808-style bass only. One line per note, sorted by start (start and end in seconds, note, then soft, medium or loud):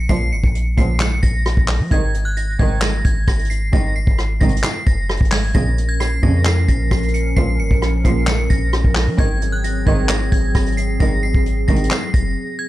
0.09 0.34 A#1 loud
0.32 0.43 G#1 loud
0.44 0.76 A#1 loud
0.78 1.21 A#1 loud
1.23 1.56 A#1 loud
1.57 1.81 A#1 loud
1.80 1.91 F3 loud
1.91 2.57 G#1 loud
2.59 3.03 G#1 loud
3.05 3.27 G#1 loud
3.28 3.71 G#1 loud
3.73 4.06 G#1 loud
4.07 4.40 G#1 loud
4.41 4.63 G#1 loud
4.87 5.19 F#1 loud
5.21 5.53 G#1 loud
5.55 6.20 A#1 loud
6.23 6.67 F2 loud
6.69 6.90 A#1 loud
6.91 7.35 A#1 loud
7.37 7.61 A#1 loud
7.59 7.70 G#1 loud
7.71 8.04 A#1 loud
8.05 8.48 A#1 loud
8.50 8.83 A#1 loud
8.84 9.09 A#1 loud
9.07 9.18 F3 loud
9.19 9.84 G#1 loud
9.87 10.30 G#1 loud
10.32 10.54 G#1 loud
10.55 10.99 G#1 loud
11.00 11.33 G#1 loud
11.34 11.67 G#1 loud
11.68 11.90 G#1 loud
12.14 12.36 F#1 loud